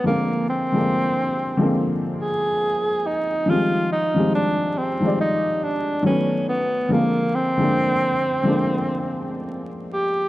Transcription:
X:1
M:4/4
L:1/16
Q:"Swing 16ths" 1/4=70
K:Bbmix
V:1 name="Tenor saxophone"
B,2 C6 z2 A4 E2 | F2 E2 D2 C2 E2 D2 ^C2 =B,2 | B,2 C8- C2 z2 G2 |]
V:2 name="Upright piano" clef=bass
[D,F,A,B,C]2 z [D,F,A,B,D]3 z [D,F,A,B,C]6 z3 | [E,F,G,A,C]2 z [E,F,G,A,C]3 z [E,F,G,A,d]4- [E,F,G,A,d] [^D,^F,=A,=B,^C]3 z | [D,F,A,B,C]2 z [D,F,A,B,D]3 z [D,F,A,B,D]6 z3 |]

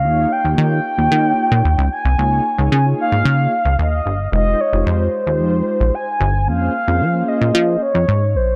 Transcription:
X:1
M:4/4
L:1/16
Q:1/4=112
K:Fm
V:1 name="Soft synth lead"
f2 g2 g8- g2 a2- | a4 a2 f6 e4 | e2 d2 c8 a4 | f6 e4 d4 c2 |]
V:2 name="Analog polysynth"
[B,EFGd]2 z [B,EFGd]3 z [B,EFGd]4- [B,EFGd] z4 | [B,EFAd]2 z [B,EFAd] z [B,EFAd]4- [B,EFAd] z6 | [A,EFGc]2 z [A,EFGc]3 z [A,EFGc]4- [A,EFGc] z4 | [B,DFAc]2 z [B,DFAc] z [B,DFAc]4- [B,DFAc] z6 |]
V:3 name="Analog synth bass" clef=bass
E,,2 z E,, E,2 z E,, E,2 z B,, E,, D,, z C,, | D,,2 z D,, D,2 z A,, D,2 z D,, E,,2 G,,,2 | F,,,2 z F,,, F,,2 z E,, F,,2 z B,,, z2 G,,,2 | F,,2 z F,, F,2 z B,, F,2 z F,, A,,2 B,,,2 |]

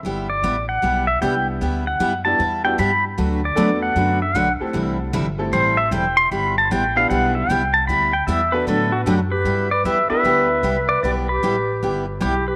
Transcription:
X:1
M:4/4
L:1/8
Q:"Swing" 1/4=153
K:G
V:1 name="Pedal steel guitar"
z d2 f2 e g z | z f2 a2 g b z | z d2 f2 e f z | z4 c e g c' |
b a g =f ^f e g a | b g e B A F G B- | B d e e4 d | d B4 z G B |]
V:2 name="Clarinet"
z8 | z8 | z8 | z8 |
z8 | z6 D G- | G B B B4 B | B G4 z E G |]
V:3 name="Upright piano"
z6 [G,B,DEG]2- | [G,B,DEG] z2 [G,B,DEG] z [G,B,DEF] z2 | z2 [A,B,DFA]3 z2 [A,CEGA]- | [A,CEGA]2 z [A,CEGA]3 z2 |
z3 [B,DEGB]3 z2 | z3 [B,DFAB]3 z2 | z3 [B,DEGB]3 z2 | z8 |]
V:4 name="Steel-string acoustic guitar"
[G,B,EG] z [G,B,EG] z [G,B,EG] z [G,B,EG] z | [G,B,EG] z [G,B,EG] z [G,B,EG] z [G,B,EG] z | [D,F,A,DFB] z [D,F,A,DFB] z [D,F,A,DFB] z [D,F,A,DFB] z | [C,E,G,CEA] z [C,E,G,CEA] z [C,E,G,CEA] z [C,E,G,CEA] z |
[G,B,EG] z [G,B,EG] z [G,B,EG] z [G,B,EG] z | [G,B,EG] z [G,B,EG] z [D,F,A,DFB] z [D,F,A,DFB] z | [G,B,EG] z [G,B,EG] z [G,B,EG] z [G,B,EG] z | [G,B,EG] z [G,B,EG] z [G,B,EG] z [G,B,EG] z |]
V:5 name="Upright bass" clef=bass
G,,,2 A,,,2 B,,,2 C,,2 | D,,2 F,,2 E,,2 G,,2 | D,,2 E,,2 F,,2 B,,, z | C,,2 G,,,2 A,,,2 E,,,2 |
G,,,2 A,,,2 B,,,2 C,,2 | D,,2 E,,2 A,,2 F,,2 | G,,2 E,, z D,,2 C,,2 | B,,,2 A,,,2 G,,,2 B,,,2 |]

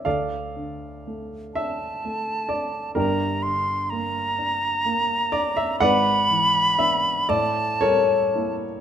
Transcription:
X:1
M:6/8
L:1/16
Q:3/8=41
K:Dm
V:1 name="Flute"
z6 a6 | b2 c'2 b8 | =b6 a4 z2 |]
V:2 name="Grand piano"
[Adf]6 e4 d2 | [DGB]8- [DGB]2 d e | [=Bd^f]4 e2 d2 [A_B^c]4 |]
V:3 name="Grand piano"
D,,2 D,2 A,2 D2 A,2 D2 | [G,,,G,,]2 D,2 B,2 D2 B,2 D2 | [^G,,,^G,,]2 E,2 [=B,D]2 A,,2 =G,2 [_B,E]2 |]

